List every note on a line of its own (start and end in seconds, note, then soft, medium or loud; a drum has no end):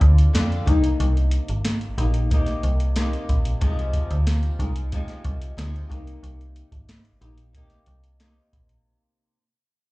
0.00 0.28 D2 loud
0.00 0.32 D3 medium
0.00 0.35 C4 medium
0.00 0.35 F4 medium
0.00 0.36 A4 medium
0.00 kick medium
0.00 closed hi-hat medium
0.18 closed hi-hat soft
0.33 0.61 F2 loud
0.33 0.67 D3 medium
0.33 0.67 C4 medium
0.33 0.68 F4 medium
0.33 0.65 A4 medium
0.33 snare loud
0.33 closed hi-hat medium
0.52 closed hi-hat soft
0.66 0.93 C2 loud
0.66 1.99 D#4 medium
0.66 1.96 G4 medium
0.66 kick medium
0.66 closed hi-hat medium
0.70 2.00 C3 medium
0.70 2.00 A#3 medium
0.84 closed hi-hat medium
1.00 1.39 C2 loud
1.00 closed hi-hat medium
1.17 closed hi-hat soft
1.31 closed hi-hat medium
1.48 1.88 G#1 medium
1.48 closed hi-hat soft
1.65 snare medium
1.65 closed hi-hat medium
1.81 closed hi-hat soft
1.98 2.50 A#1 loud
1.98 2.32 D#4 medium
1.98 2.31 G4 soft
1.98 closed hi-hat medium
2.02 2.30 A#3 soft
2.14 closed hi-hat medium
2.30 2.94 C3 medium
2.30 2.96 A#3 medium
2.30 2.98 D#4 medium
2.30 2.98 G4 medium
2.30 kick medium
2.30 closed hi-hat medium
2.46 snare soft
2.46 closed hi-hat soft
2.63 3.16 C2 medium
2.63 closed hi-hat medium
2.80 closed hi-hat soft
2.96 3.60 C3 medium
2.96 3.62 A#3 medium
2.96 3.63 D#4 medium
2.96 snare loud
2.96 closed hi-hat loud
3.00 3.63 G4 medium
3.13 closed hi-hat soft
3.29 3.55 A#1 medium
3.29 kick medium
3.29 closed hi-hat medium
3.45 closed hi-hat medium
3.61 4.01 C2 medium
3.61 4.59 C3 medium
3.61 4.60 F3 medium
3.61 4.60 G#3 medium
3.61 4.59 D#4 medium
3.61 kick loud
3.61 closed hi-hat medium
3.79 closed hi-hat soft
3.93 kick medium
3.93 closed hi-hat medium
4.11 4.50 D2 medium
4.11 closed hi-hat soft
4.27 snare loud
4.27 closed hi-hat medium
4.43 closed hi-hat soft
4.59 4.99 C2 medium
4.59 4.93 G#3 soft
4.59 4.92 D#4 soft
4.59 kick medium
4.59 closed hi-hat medium
4.63 4.92 F3 soft
4.76 closed hi-hat soft
4.92 5.56 C3 medium
4.92 5.57 F3 medium
4.92 5.59 G#3 medium
4.92 5.61 D#4 medium
4.92 kick medium
4.92 closed hi-hat medium
5.08 snare soft
5.08 closed hi-hat soft
5.24 5.51 C2 loud
5.24 kick medium
5.24 closed hi-hat medium
5.42 closed hi-hat medium
5.57 5.84 D2 medium
5.57 5.90 C3 medium
5.57 5.91 F3 medium
5.57 5.92 G#3 medium
5.57 snare loud
5.57 closed hi-hat medium
5.61 5.90 D#4 medium
5.76 closed hi-hat soft
5.89 6.17 C2 medium
5.89 7.23 D#4 medium
5.89 7.21 G4 medium
5.89 kick medium
5.89 closed hi-hat medium
5.94 7.28 C3 medium
5.94 7.25 A#3 medium
6.07 closed hi-hat medium
6.23 6.62 C2 medium
6.23 closed hi-hat medium
6.41 closed hi-hat soft
6.56 closed hi-hat medium
6.72 7.11 G#1 medium
6.72 kick medium
6.72 closed hi-hat soft
6.89 snare medium
6.89 closed hi-hat medium
7.05 closed hi-hat soft
7.21 7.74 A#1 medium
7.21 7.54 A#3 soft
7.21 7.55 D#4 soft
7.21 7.54 G4 medium
7.21 closed hi-hat medium
7.38 closed hi-hat soft
7.53 8.19 C3 medium
7.53 8.20 A#3 medium
7.53 8.22 D#4 medium
7.53 kick medium
7.53 closed hi-hat medium
7.57 8.23 G4 medium
7.70 snare soft
7.70 closed hi-hat soft
7.86 8.39 C2 medium
7.86 closed hi-hat medium
8.04 closed hi-hat soft
8.19 9.37 C3 medium
8.19 9.37 A#3 medium
8.19 9.37 D#4 medium
8.19 9.37 G4 medium
8.19 snare loud
8.19 closed hi-hat medium
8.53 8.79 A#1 medium
8.53 kick medium
8.53 closed hi-hat medium
8.69 closed hi-hat soft